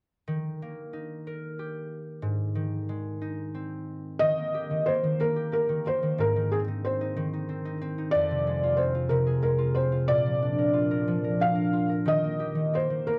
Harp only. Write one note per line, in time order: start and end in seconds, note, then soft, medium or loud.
0.28 2.29 D#3 medium
0.62 3.84 A#3 soft
0.93 3.21 D#4 soft
1.27 3.39 A#4 medium
1.59 2.28 G4 soft
2.22 4.26 G#2 medium
2.55 4.20 D#3 soft
2.89 4.26 G#3 soft
3.22 5.92 D#4 soft
3.54 6.52 C4 soft
4.21 4.69 D#3 medium
4.38 4.88 A#3 soft
4.54 5.36 G4 soft
4.71 5.02 D#3 soft
4.88 5.19 A#3 soft
5.04 5.68 D#3 soft
5.20 5.52 A#3 medium
5.36 6.24 G4 soft
5.52 5.85 A#3 soft
5.69 6.01 D#3 soft
5.86 9.07 A#3 medium
6.03 6.24 D#3 soft
6.18 8.18 G#2 medium
6.36 7.15 D#3 soft
6.52 6.85 C4 medium
6.68 7.01 D#4 soft
6.86 7.48 C4 soft
7.01 7.33 D#4 soft
7.16 8.18 D#3 medium
7.33 7.65 D#4 soft
7.49 7.81 C4 soft
7.65 7.98 D#4 medium
7.81 8.77 C4 medium
7.98 10.48 D#4 soft
8.15 10.14 F2 medium
8.31 9.09 C3 soft
8.47 9.41 G#3 soft
8.63 8.94 F4 medium
8.78 9.75 C4 medium
8.95 9.58 F4 medium
9.10 10.14 C3 medium
9.26 11.54 G#4 soft
9.42 10.14 G#3 soft
9.58 9.92 F4 medium
9.75 12.75 C4 medium
9.92 10.73 F4 medium
10.10 12.12 A#2 medium
10.26 11.06 F3 soft
10.42 11.39 D4 soft
10.58 10.90 A#4 soft
10.73 11.72 F4 soft
10.91 11.24 A#4 soft
11.07 12.12 F3 medium
11.24 11.55 A#4 soft
11.40 12.12 D4 soft
11.55 11.89 A#4 soft
11.73 13.19 F4 soft
11.89 13.19 A#4 soft
12.06 12.54 D#3 medium
12.24 12.73 A#3 soft
12.40 13.19 G4 soft
12.55 12.89 D#3 soft
12.73 13.07 A#3 soft
12.90 13.19 D#3 soft
13.07 13.19 A#3 medium